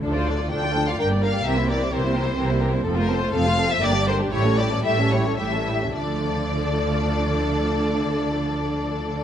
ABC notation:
X:1
M:3/4
L:1/16
Q:1/4=119
K:Dm
V:1 name="Violin section"
z c d2 g3 f g2 f2 | e2 d2 c6 z2 | z B c2 f3 e d2 c2 | ^c2 d2 e2 c2 e4 |
d12- | d12 |]
V:2 name="Violin section"
[DA] [Fd] [DA] [Fd] [DA] [Fd] [DA] [Fd] B [Gd] B [Gd] | [GB] [Ec] [GB] [Ec] [GB] [Ec] [GB] [Ec] [GB] [Ec] [GB] [Ec] | A [Fc] A [Fc] A [Fc] A [Fc] [GB] [DG] [GB] [DG] | [EG] [^CA] [EG] [CA] [EG] [CA] [EG] [CA] [EG] [CA] [EG] [CA] |
[DA]12- | [DA]12 |]
V:3 name="Viola section"
[F,D] [A,F] [F,D] [A,F] [F,D] [A,F] [F,D] [A,F] [B,D] [G,B,] [B,D] [G,B,] | [E,C] [G,B,] [E,C] [G,B,] [E,C] [G,B,] [E,C] [G,B,] [E,C] [G,B,] [E,C] [G,B,] | [F,C] A, [F,C] A, [F,C] A, [F,C] A, [D,B,] G, [D,B,] G, | [G,A,] [E,G,] [G,A,] [E,G,] [G,A,] [E,G,] [G,A,] [E,G,] [G,A,] [E,G,] [G,A,] [E,G,] |
[F,A,]12- | [F,A,]12 |]
V:4 name="Cello section" clef=bass
D,,4 D,,4 G,,4 | C,4 C,4 C,4 | F,,4 F,,4 G,,4 | A,,4 A,,4 A,,4 |
D,12- | D,12 |]
V:5 name="Double bass section" clef=bass
D,,4 D,,4 G,,,4 | C,,4 C,,4 C,,4 | F,,,4 F,,,4 G,,,4 | A,,,4 A,,,4 A,,,4 |
D,,12- | D,,12 |]